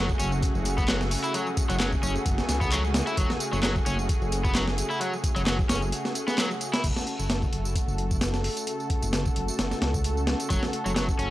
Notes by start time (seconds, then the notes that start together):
Already playing: F#1 C#3 A3 F#4 G#4
0.09 kick, tambourine
0.19 F#1 C#4, closed hi-hat, tambourine
0.32 tambourine
0.42 F#1, kick, closed hi-hat, tambourine
0.55 F#1, tambourine
0.65 closed hi-hat, tambourine
0.78 B3, kick, tambourine
0.88 F#3, snare, clap, closed hi-hat, tambourine
1.01 snare, tambourine
1.11 open hi-hat, tambourine
1.24 E4, closed hi-hat, tambourine
1.34 F#3, closed hi-hat, tambourine
1.47 tambourine
1.57 kick, closed hi-hat, tambourine
1.70 F#1 F#3, closed hi-hat, tambourine
1.80 F#3, snare, clap, closed hi-hat, tambourine
1.92 kick, tambourine
2.03 F#1 C#4, tambourine
2.16 tambourine
2.26 F#1, kick, closed hi-hat, tambourine
2.38 snare, tambourine
2.49 C#2, snare, closed hi-hat, tambourine
2.61 B3, kick, tambourine
2.72 F#3, clap, closed hi-hat, tambourine
2.85 tambourine
2.94 C#2, snare, closed hi-hat, tambourine
3.07 E4, closed hi-hat, tambourine
3.17 F#1 F#3, kick, closed hi-hat, tambourine
3.30 snare, tambourine
3.40 closed hi-hat, tambourine
3.53 F#1 F#3, tambourine
3.63 F#3, snare, clap, closed hi-hat, tambourine
3.76 kick, tambourine
3.86 F#1 C#4, closed hi-hat, tambourine
3.99 tambourine
4.09 F#1, kick, closed hi-hat, tambourine
4.22 F#1, tambourine
4.32 closed hi-hat, tambourine
4.45 B3, kick, tambourine
4.55 F#3, snare, clap, closed hi-hat, tambourine
4.68 snare, tambourine
4.78 closed hi-hat, tambourine
4.90 E4, tambourine
5.00 F#3, closed hi-hat, tambourine
5.13 tambourine
5.24 kick, closed hi-hat, tambourine
5.36 F#1 F#3, closed hi-hat, tambourine
5.46 F#3, snare, clap, closed hi-hat, tambourine
5.59 kick, tambourine
5.69 F#1 C#4, snare, closed hi-hat, tambourine
5.82 tambourine
5.92 closed hi-hat, tambourine
6.05 snare, tambourine
6.15 closed hi-hat, tambourine
6.28 B3, snare, tambourine
6.38 F#3, snare, clap, closed hi-hat, tambourine
6.51 tambourine
6.61 closed hi-hat, tambourine
6.74 E4, snare, closed hi-hat, tambourine
6.83 F#1 C#3 A3 F#4 A4, kick, closed hi-hat, crash, tambourine
6.96 snare, tambourine
7.07 closed hi-hat
7.19 F#1, tambourine
7.30 snare, closed hi-hat, tambourine
7.42 kick, tambourine
7.53 F#1, closed hi-hat
7.65 tambourine
7.75 F#1, kick, closed hi-hat, tambourine
7.88 F#1, tambourine
7.98 closed hi-hat
8.11 kick, tambourine
8.21 snare, closed hi-hat, tambourine
8.34 snare, tambourine
8.44 open hi-hat
8.57 closed hi-hat, tambourine
8.67 closed hi-hat, tambourine
8.80 tambourine
8.90 kick, closed hi-hat
9.02 F#1, closed hi-hat, tambourine
9.13 snare, closed hi-hat, tambourine
9.25 kick, tambourine
9.36 F#1, closed hi-hat
9.48 tambourine
9.59 F#1, snare, closed hi-hat, tambourine
9.71 snare, tambourine
9.82 C#2, snare, closed hi-hat
9.94 kick, tambourine
10.04 closed hi-hat, tambourine
10.17 tambourine
10.27 C#2, snare, closed hi-hat
10.40 closed hi-hat, tambourine
10.50 F#1 F#3, kick, closed hi-hat, tambourine
10.63 snare, tambourine
10.73 closed hi-hat
10.86 F#1 F#3, tambourine
10.96 F#3, snare, closed hi-hat, tambourine
11.09 kick, tambourine
11.19 F#1 C#4, closed hi-hat